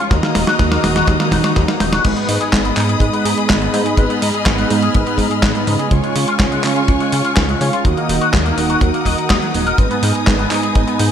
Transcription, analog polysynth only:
0.11 0.81 D#3 medium
0.11 0.81 A#3 medium
0.11 0.81 D#4 medium
0.11 0.81 F#4 medium
0.11 0.81 D#5 medium
0.83 1.77 D#3 medium
0.83 1.77 A#3 medium
0.83 1.77 D#4 medium
0.83 1.77 F#4 medium
0.83 1.77 F#5 medium
2.04 2.74 G#2 medium
2.04 2.74 G#3 medium
2.04 2.74 B3 medium
2.04 2.74 D#4 medium
2.04 2.74 B4 medium
2.77 3.71 G#2 medium
2.77 3.71 G#3 medium
2.77 3.71 B3 medium
2.77 3.71 D#4 medium
2.77 3.71 D#5 medium
3.74 3.95 G#2 medium
3.74 3.95 G#3 medium
3.74 3.95 B3 medium
3.74 3.95 D#4 medium
3.74 3.95 D#5 loud
3.98 4.68 G#2 medium
3.98 4.68 G#3 medium
3.98 4.68 B3 medium
3.98 4.68 D#4 medium
3.98 4.68 B4 medium
4.70 5.64 G#2 medium
4.70 5.64 G#3 medium
4.70 5.64 B3 medium
4.70 5.64 D#4 medium
4.70 5.64 D#5 medium
5.67 5.89 C#3 medium
5.67 5.89 G#3 medium
5.67 5.89 B3 medium
5.67 5.89 D#4 medium
5.67 5.89 D#5 medium
5.91 6.61 C#3 medium
5.91 6.61 G#3 medium
5.91 6.61 C#4 medium
5.91 6.61 F4 medium
5.91 6.61 C#5 medium
6.64 7.58 C#3 medium
6.64 7.58 G#3 medium
6.64 7.58 C#4 medium
6.64 7.58 F4 medium
6.64 7.58 F5 medium
7.61 7.82 G#3 medium
7.61 7.82 C#4 medium
7.61 7.82 F4 medium
7.61 7.82 F5 medium
7.85 8.55 D#3 medium
7.85 8.55 A#3 medium
7.85 8.55 D#4 medium
7.85 8.55 F#4 medium
7.85 8.55 D#5 medium
8.58 9.52 D#3 medium
8.58 9.52 A#3 medium
8.58 9.52 D#4 medium
8.58 9.52 F#4 medium
8.58 9.52 F#5 medium
9.54 9.76 A#3 medium
9.54 9.76 D#4 medium
9.54 9.76 F#4 medium
9.54 9.76 F#5 medium
9.79 10.48 G#2 medium
9.79 10.48 G#3 medium
9.79 10.48 B3 medium
9.79 10.48 D#4 medium
9.79 10.48 B4 medium
10.51 11.12 G#2 medium
10.51 11.12 G#3 medium
10.51 11.12 B3 medium
10.51 11.12 D#4 medium
10.51 11.12 D#5 medium

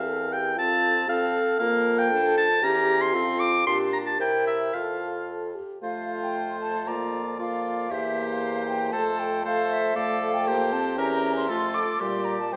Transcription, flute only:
0.00 0.59 A#4 medium
0.57 1.08 A4 medium
1.09 1.58 A4 medium
1.59 2.65 F4 medium
2.63 3.16 G4 medium
3.14 3.43 A4 medium
3.67 4.21 G4 loud
4.19 4.76 A#4 medium
4.75 5.56 A4 medium
5.83 6.19 F5 loud
6.22 6.60 G5 loud
6.60 6.89 A5 loud
6.87 7.39 A#5 loud
7.40 7.93 F5 loud
7.91 8.29 E5 loud
8.30 8.67 F5 loud
8.68 8.94 G5 loud
8.92 9.21 A5 loud
9.19 9.45 G5 loud
9.46 9.71 F5 loud
9.71 9.97 E5 loud
9.96 10.35 F5 loud
10.34 10.74 G5 loud
10.73 10.97 A5 loud
10.97 11.36 A#5 loud
11.36 11.76 C6 loud
11.75 12.01 D6 loud
12.00 12.26 C6 loud
12.25 12.38 A#5 loud
12.39 12.54 A5 loud
12.52 12.56 G5 loud

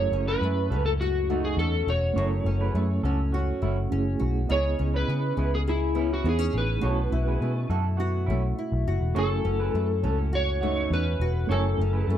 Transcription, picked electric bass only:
0.12 0.35 F#1 medium
0.41 0.72 F#2 medium
0.70 1.54 C#2 medium
1.57 1.81 E2 medium
1.87 2.10 E1 medium
2.16 2.39 F#1 medium
2.45 2.68 F#1 loud
2.75 2.98 F#2 medium
3.03 3.50 C#2 medium
3.62 3.86 F#1 medium
3.92 4.15 F#1 medium
4.21 4.44 B1 medium
4.50 4.73 C#2 medium
4.80 5.03 C#2 medium
5.08 5.31 C#3 medium
5.37 6.21 C#2 medium
6.24 6.48 E2 medium
6.54 6.77 A1 medium
6.83 7.06 B1 medium
7.12 7.35 B1 loud
7.41 7.64 B2 medium
7.70 8.30 F#2 medium
8.28 8.52 B1 medium
8.72 8.84 B1 medium
8.87 8.99 F#1 medium
9.01 9.13 E1 medium
9.16 9.39 F#1 medium
9.45 9.68 F#1 loud
9.74 10.05 F#2 medium
10.03 10.87 C#2 medium
10.90 11.14 E2 medium
11.20 11.43 E1 medium
11.49 11.73 F#1 medium
11.79 12.02 F#1 loud
12.08 12.18 F#2 medium

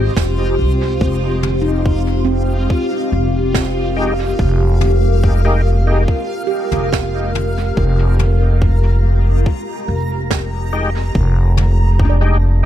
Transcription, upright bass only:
0.00 0.11 G#1 loud
0.17 0.60 F1 medium
0.59 0.96 C2 medium
1.01 2.66 F1 medium
3.12 4.35 F1 medium
4.39 6.04 F1 medium
6.72 7.73 F1 medium
7.77 9.42 F1 medium
9.88 11.11 F1 medium
11.15 12.65 F1 medium

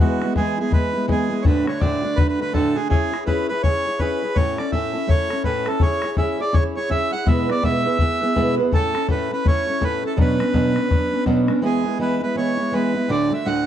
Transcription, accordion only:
0.00 0.33 F#4 medium
0.37 0.59 G#4 medium
0.60 0.72 G#4 medium
0.72 1.06 B4 medium
1.11 1.43 G#4 medium
1.42 1.45 C#5 medium
1.47 1.66 B4 medium
1.68 1.81 C#5 medium
1.80 2.18 D5 loud
2.16 2.27 B4 loud
2.29 2.40 B4 medium
2.41 2.53 B4 loud
2.54 2.77 A4 medium
2.75 2.88 G#4 medium
2.89 3.24 G#4 medium
3.27 3.47 B4 medium
3.48 3.62 B4 loud
3.63 4.01 C#5 loud
3.99 4.37 B4 medium
4.35 4.58 C#5 loud
4.58 4.71 D5 medium
4.72 5.10 E5 loud
5.09 5.43 C#5 loud
5.45 5.68 B4 loud
5.67 5.82 A4 medium
5.82 6.16 C#5 loud
6.18 6.41 E5 medium
6.41 6.55 D5 loud
6.54 6.64 C#5 loud
6.77 6.90 C#5 loud
6.91 7.11 E5 loud
7.12 7.27 F#5 loud
7.27 7.50 E5 loud
7.51 7.64 D5 medium
7.64 8.55 E5 loud
8.74 9.07 A4 loud
9.11 9.31 B4 medium
9.33 9.47 B4 loud
9.47 9.84 C#5 loud
9.84 10.04 B4 loud
10.06 10.18 A4 medium
10.20 11.24 B4 medium
11.65 11.98 G#4 medium
12.01 12.21 B4 medium
12.23 12.36 B4 medium
12.37 12.74 C#5 medium
12.73 13.11 B4 medium
13.11 13.33 D5 loud
13.33 13.47 E5 medium
13.46 13.66 F#5 loud

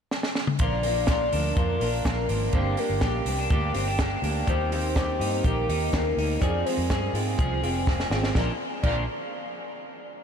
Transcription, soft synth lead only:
0.61 1.59 D5 loud
1.57 1.81 A#4 medium
1.81 2.56 A#4 loud
2.55 2.81 C5 medium
2.79 3.51 A#4 medium
4.49 5.46 C5 loud
5.45 5.69 A#4 loud
5.69 6.42 A#4 loud
6.41 6.67 D5 loud
6.65 7.38 C5 medium
8.36 8.49 D5 medium
8.82 9.05 D5 medium

